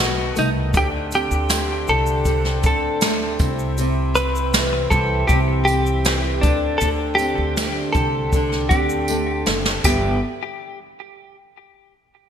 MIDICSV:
0, 0, Header, 1, 6, 480
1, 0, Start_track
1, 0, Key_signature, 1, "major"
1, 0, Tempo, 758342
1, 472, Time_signature, 4, 2, 24, 8
1, 7780, End_track
2, 0, Start_track
2, 0, Title_t, "Clean electric guitar"
2, 0, Program_c, 0, 27
2, 0, Note_on_c, 0, 66, 93
2, 245, Note_on_c, 0, 63, 85
2, 250, Note_off_c, 0, 66, 0
2, 308, Note_off_c, 0, 63, 0
2, 489, Note_on_c, 0, 67, 96
2, 552, Note_off_c, 0, 67, 0
2, 729, Note_on_c, 0, 67, 95
2, 1175, Note_off_c, 0, 67, 0
2, 1199, Note_on_c, 0, 69, 97
2, 1678, Note_off_c, 0, 69, 0
2, 1686, Note_on_c, 0, 69, 87
2, 2133, Note_off_c, 0, 69, 0
2, 2630, Note_on_c, 0, 71, 115
2, 3085, Note_off_c, 0, 71, 0
2, 3104, Note_on_c, 0, 69, 98
2, 3336, Note_off_c, 0, 69, 0
2, 3339, Note_on_c, 0, 67, 102
2, 3405, Note_off_c, 0, 67, 0
2, 3576, Note_on_c, 0, 67, 96
2, 4060, Note_on_c, 0, 62, 78
2, 4079, Note_off_c, 0, 67, 0
2, 4289, Note_off_c, 0, 62, 0
2, 4291, Note_on_c, 0, 69, 104
2, 4359, Note_off_c, 0, 69, 0
2, 4526, Note_on_c, 0, 67, 98
2, 4994, Note_off_c, 0, 67, 0
2, 5016, Note_on_c, 0, 69, 96
2, 5479, Note_off_c, 0, 69, 0
2, 5502, Note_on_c, 0, 67, 78
2, 5962, Note_off_c, 0, 67, 0
2, 6236, Note_on_c, 0, 67, 85
2, 6458, Note_off_c, 0, 67, 0
2, 7780, End_track
3, 0, Start_track
3, 0, Title_t, "Harmonium"
3, 0, Program_c, 1, 20
3, 0, Note_on_c, 1, 57, 68
3, 0, Note_on_c, 1, 59, 64
3, 0, Note_on_c, 1, 63, 76
3, 452, Note_off_c, 1, 63, 0
3, 453, Note_off_c, 1, 59, 0
3, 472, Note_on_c, 1, 50, 77
3, 474, Note_on_c, 1, 67, 82
3, 477, Note_on_c, 1, 60, 66
3, 2127, Note_off_c, 1, 57, 0
3, 2135, Note_off_c, 1, 50, 0
3, 2136, Note_off_c, 1, 67, 0
3, 2146, Note_on_c, 1, 48, 71
3, 2148, Note_on_c, 1, 64, 71
3, 2152, Note_on_c, 1, 67, 82
3, 4050, Note_off_c, 1, 48, 0
3, 4051, Note_off_c, 1, 64, 0
3, 4071, Note_on_c, 1, 50, 71
3, 4073, Note_on_c, 1, 57, 70
3, 6207, Note_off_c, 1, 67, 0
3, 6210, Note_off_c, 1, 50, 0
3, 6210, Note_off_c, 1, 60, 0
3, 6211, Note_off_c, 1, 57, 0
3, 6232, Note_on_c, 1, 62, 64
3, 6232, Note_on_c, 1, 71, 74
3, 6234, Note_on_c, 1, 55, 67
3, 6234, Note_on_c, 1, 64, 61
3, 6455, Note_off_c, 1, 62, 0
3, 6455, Note_off_c, 1, 71, 0
3, 6456, Note_off_c, 1, 55, 0
3, 6457, Note_off_c, 1, 64, 0
3, 7780, End_track
4, 0, Start_track
4, 0, Title_t, "Nylon-string guitar"
4, 0, Program_c, 2, 24
4, 0, Note_on_c, 2, 47, 78
4, 0, Note_on_c, 2, 51, 66
4, 0, Note_on_c, 2, 59, 60
4, 225, Note_on_c, 2, 57, 60
4, 471, Note_off_c, 2, 51, 0
4, 475, Note_on_c, 2, 50, 84
4, 519, Note_off_c, 2, 47, 0
4, 519, Note_off_c, 2, 59, 0
4, 710, Note_on_c, 2, 60, 60
4, 953, Note_off_c, 2, 57, 0
4, 956, Note_on_c, 2, 57, 67
4, 1189, Note_on_c, 2, 67, 67
4, 1424, Note_off_c, 2, 50, 0
4, 1432, Note_on_c, 2, 50, 85
4, 1677, Note_off_c, 2, 60, 0
4, 1680, Note_on_c, 2, 60, 61
4, 1914, Note_off_c, 2, 57, 0
4, 1921, Note_on_c, 2, 57, 73
4, 2158, Note_on_c, 2, 48, 73
4, 2200, Note_off_c, 2, 50, 0
4, 2204, Note_off_c, 2, 57, 0
4, 2388, Note_off_c, 2, 48, 0
4, 2396, Note_on_c, 2, 48, 89
4, 2638, Note_off_c, 2, 60, 0
4, 2641, Note_on_c, 2, 60, 59
4, 2882, Note_on_c, 2, 52, 67
4, 3116, Note_off_c, 2, 67, 0
4, 3118, Note_on_c, 2, 67, 69
4, 3351, Note_off_c, 2, 48, 0
4, 3358, Note_on_c, 2, 48, 82
4, 3596, Note_off_c, 2, 60, 0
4, 3599, Note_on_c, 2, 60, 62
4, 3830, Note_off_c, 2, 52, 0
4, 3838, Note_on_c, 2, 52, 72
4, 4072, Note_off_c, 2, 52, 0
4, 4075, Note_on_c, 2, 50, 76
4, 4123, Note_off_c, 2, 48, 0
4, 4311, Note_off_c, 2, 50, 0
4, 4313, Note_on_c, 2, 50, 88
4, 4332, Note_off_c, 2, 60, 0
4, 4548, Note_on_c, 2, 60, 59
4, 4790, Note_on_c, 2, 57, 64
4, 4809, Note_off_c, 2, 67, 0
4, 5034, Note_on_c, 2, 67, 65
4, 5276, Note_off_c, 2, 50, 0
4, 5279, Note_on_c, 2, 50, 81
4, 5510, Note_off_c, 2, 60, 0
4, 5517, Note_on_c, 2, 60, 60
4, 5749, Note_off_c, 2, 57, 0
4, 5756, Note_on_c, 2, 57, 69
4, 5982, Note_off_c, 2, 57, 0
4, 5990, Note_on_c, 2, 57, 57
4, 6229, Note_on_c, 2, 43, 76
4, 6232, Note_off_c, 2, 50, 0
4, 6232, Note_on_c, 2, 50, 86
4, 6236, Note_on_c, 2, 52, 87
4, 6238, Note_off_c, 2, 57, 0
4, 6240, Note_off_c, 2, 60, 0
4, 6240, Note_on_c, 2, 55, 84
4, 6241, Note_off_c, 2, 67, 0
4, 6242, Note_on_c, 2, 59, 92
4, 6243, Note_on_c, 2, 67, 86
4, 6423, Note_off_c, 2, 43, 0
4, 6424, Note_off_c, 2, 50, 0
4, 6426, Note_off_c, 2, 52, 0
4, 6428, Note_off_c, 2, 55, 0
4, 6429, Note_off_c, 2, 59, 0
4, 6430, Note_off_c, 2, 67, 0
4, 7780, End_track
5, 0, Start_track
5, 0, Title_t, "Upright bass"
5, 0, Program_c, 3, 32
5, 0, Note_on_c, 3, 35, 99
5, 204, Note_off_c, 3, 35, 0
5, 233, Note_on_c, 3, 36, 82
5, 453, Note_off_c, 3, 36, 0
5, 469, Note_on_c, 3, 38, 109
5, 805, Note_off_c, 3, 38, 0
5, 829, Note_on_c, 3, 38, 90
5, 1165, Note_off_c, 3, 38, 0
5, 1192, Note_on_c, 3, 36, 90
5, 1647, Note_off_c, 3, 36, 0
5, 1668, Note_on_c, 3, 38, 90
5, 2125, Note_off_c, 3, 38, 0
5, 2151, Note_on_c, 3, 36, 98
5, 3086, Note_off_c, 3, 36, 0
5, 3111, Note_on_c, 3, 36, 107
5, 3332, Note_off_c, 3, 36, 0
5, 3348, Note_on_c, 3, 36, 105
5, 4044, Note_off_c, 3, 36, 0
5, 4072, Note_on_c, 3, 38, 92
5, 4293, Note_off_c, 3, 38, 0
5, 4312, Note_on_c, 3, 38, 107
5, 4647, Note_off_c, 3, 38, 0
5, 4670, Note_on_c, 3, 38, 90
5, 5006, Note_off_c, 3, 38, 0
5, 5031, Note_on_c, 3, 36, 83
5, 5486, Note_off_c, 3, 36, 0
5, 5511, Note_on_c, 3, 38, 86
5, 5966, Note_off_c, 3, 38, 0
5, 5995, Note_on_c, 3, 30, 82
5, 6215, Note_off_c, 3, 30, 0
5, 6229, Note_on_c, 3, 31, 96
5, 6454, Note_off_c, 3, 31, 0
5, 7780, End_track
6, 0, Start_track
6, 0, Title_t, "Drums"
6, 228, Note_on_c, 9, 82, 54
6, 231, Note_on_c, 9, 54, 52
6, 291, Note_off_c, 9, 82, 0
6, 295, Note_off_c, 9, 54, 0
6, 466, Note_on_c, 9, 82, 75
6, 469, Note_on_c, 9, 36, 111
6, 473, Note_on_c, 9, 54, 45
6, 529, Note_off_c, 9, 82, 0
6, 532, Note_off_c, 9, 36, 0
6, 536, Note_off_c, 9, 54, 0
6, 704, Note_on_c, 9, 82, 60
6, 710, Note_on_c, 9, 54, 49
6, 768, Note_off_c, 9, 82, 0
6, 774, Note_off_c, 9, 54, 0
6, 831, Note_on_c, 9, 82, 53
6, 894, Note_off_c, 9, 82, 0
6, 946, Note_on_c, 9, 82, 70
6, 947, Note_on_c, 9, 38, 99
6, 952, Note_on_c, 9, 54, 90
6, 1009, Note_off_c, 9, 82, 0
6, 1010, Note_off_c, 9, 38, 0
6, 1015, Note_off_c, 9, 54, 0
6, 1187, Note_on_c, 9, 82, 51
6, 1251, Note_off_c, 9, 82, 0
6, 1306, Note_on_c, 9, 82, 53
6, 1370, Note_off_c, 9, 82, 0
6, 1425, Note_on_c, 9, 82, 70
6, 1427, Note_on_c, 9, 36, 81
6, 1428, Note_on_c, 9, 54, 26
6, 1488, Note_off_c, 9, 82, 0
6, 1490, Note_off_c, 9, 36, 0
6, 1492, Note_off_c, 9, 54, 0
6, 1548, Note_on_c, 9, 38, 36
6, 1611, Note_off_c, 9, 38, 0
6, 1666, Note_on_c, 9, 82, 51
6, 1667, Note_on_c, 9, 54, 48
6, 1670, Note_on_c, 9, 36, 98
6, 1729, Note_off_c, 9, 82, 0
6, 1730, Note_off_c, 9, 54, 0
6, 1733, Note_off_c, 9, 36, 0
6, 1906, Note_on_c, 9, 54, 71
6, 1907, Note_on_c, 9, 82, 68
6, 1911, Note_on_c, 9, 38, 115
6, 1969, Note_off_c, 9, 54, 0
6, 1971, Note_off_c, 9, 82, 0
6, 1974, Note_off_c, 9, 38, 0
6, 2148, Note_on_c, 9, 54, 51
6, 2149, Note_on_c, 9, 82, 49
6, 2151, Note_on_c, 9, 36, 107
6, 2211, Note_off_c, 9, 54, 0
6, 2212, Note_off_c, 9, 82, 0
6, 2214, Note_off_c, 9, 36, 0
6, 2272, Note_on_c, 9, 82, 49
6, 2335, Note_off_c, 9, 82, 0
6, 2390, Note_on_c, 9, 82, 76
6, 2391, Note_on_c, 9, 54, 44
6, 2454, Note_off_c, 9, 54, 0
6, 2454, Note_off_c, 9, 82, 0
6, 2628, Note_on_c, 9, 82, 60
6, 2636, Note_on_c, 9, 54, 44
6, 2691, Note_off_c, 9, 82, 0
6, 2700, Note_off_c, 9, 54, 0
6, 2757, Note_on_c, 9, 82, 57
6, 2821, Note_off_c, 9, 82, 0
6, 2871, Note_on_c, 9, 82, 69
6, 2872, Note_on_c, 9, 38, 100
6, 2874, Note_on_c, 9, 54, 84
6, 2934, Note_off_c, 9, 82, 0
6, 2935, Note_off_c, 9, 38, 0
6, 2937, Note_off_c, 9, 54, 0
6, 3110, Note_on_c, 9, 36, 94
6, 3110, Note_on_c, 9, 82, 51
6, 3173, Note_off_c, 9, 36, 0
6, 3173, Note_off_c, 9, 82, 0
6, 3347, Note_on_c, 9, 82, 73
6, 3349, Note_on_c, 9, 36, 84
6, 3352, Note_on_c, 9, 54, 27
6, 3410, Note_off_c, 9, 82, 0
6, 3413, Note_off_c, 9, 36, 0
6, 3416, Note_off_c, 9, 54, 0
6, 3592, Note_on_c, 9, 54, 47
6, 3592, Note_on_c, 9, 82, 53
6, 3655, Note_off_c, 9, 54, 0
6, 3656, Note_off_c, 9, 82, 0
6, 3711, Note_on_c, 9, 82, 50
6, 3774, Note_off_c, 9, 82, 0
6, 3828, Note_on_c, 9, 54, 70
6, 3830, Note_on_c, 9, 82, 72
6, 3833, Note_on_c, 9, 38, 115
6, 3891, Note_off_c, 9, 54, 0
6, 3893, Note_off_c, 9, 82, 0
6, 3896, Note_off_c, 9, 38, 0
6, 4070, Note_on_c, 9, 54, 52
6, 4071, Note_on_c, 9, 82, 49
6, 4072, Note_on_c, 9, 36, 98
6, 4133, Note_off_c, 9, 54, 0
6, 4134, Note_off_c, 9, 82, 0
6, 4135, Note_off_c, 9, 36, 0
6, 4309, Note_on_c, 9, 82, 75
6, 4310, Note_on_c, 9, 54, 42
6, 4372, Note_off_c, 9, 82, 0
6, 4374, Note_off_c, 9, 54, 0
6, 4545, Note_on_c, 9, 82, 62
6, 4552, Note_on_c, 9, 54, 46
6, 4608, Note_off_c, 9, 82, 0
6, 4615, Note_off_c, 9, 54, 0
6, 4792, Note_on_c, 9, 82, 68
6, 4793, Note_on_c, 9, 38, 96
6, 4797, Note_on_c, 9, 54, 86
6, 4855, Note_off_c, 9, 82, 0
6, 4856, Note_off_c, 9, 38, 0
6, 4860, Note_off_c, 9, 54, 0
6, 5028, Note_on_c, 9, 54, 33
6, 5031, Note_on_c, 9, 36, 97
6, 5033, Note_on_c, 9, 82, 49
6, 5092, Note_off_c, 9, 54, 0
6, 5095, Note_off_c, 9, 36, 0
6, 5096, Note_off_c, 9, 82, 0
6, 5270, Note_on_c, 9, 36, 88
6, 5270, Note_on_c, 9, 82, 72
6, 5276, Note_on_c, 9, 54, 25
6, 5333, Note_off_c, 9, 36, 0
6, 5333, Note_off_c, 9, 82, 0
6, 5339, Note_off_c, 9, 54, 0
6, 5392, Note_on_c, 9, 38, 33
6, 5455, Note_off_c, 9, 38, 0
6, 5510, Note_on_c, 9, 82, 48
6, 5511, Note_on_c, 9, 36, 100
6, 5512, Note_on_c, 9, 54, 50
6, 5573, Note_off_c, 9, 82, 0
6, 5574, Note_off_c, 9, 36, 0
6, 5575, Note_off_c, 9, 54, 0
6, 5630, Note_on_c, 9, 82, 52
6, 5694, Note_off_c, 9, 82, 0
6, 5747, Note_on_c, 9, 54, 66
6, 5810, Note_off_c, 9, 54, 0
6, 5988, Note_on_c, 9, 54, 54
6, 5991, Note_on_c, 9, 38, 88
6, 6051, Note_off_c, 9, 54, 0
6, 6054, Note_off_c, 9, 38, 0
6, 6110, Note_on_c, 9, 38, 89
6, 6173, Note_off_c, 9, 38, 0
6, 6229, Note_on_c, 9, 55, 83
6, 6230, Note_on_c, 9, 54, 78
6, 6231, Note_on_c, 9, 36, 103
6, 6292, Note_off_c, 9, 55, 0
6, 6293, Note_off_c, 9, 54, 0
6, 6294, Note_off_c, 9, 36, 0
6, 7780, End_track
0, 0, End_of_file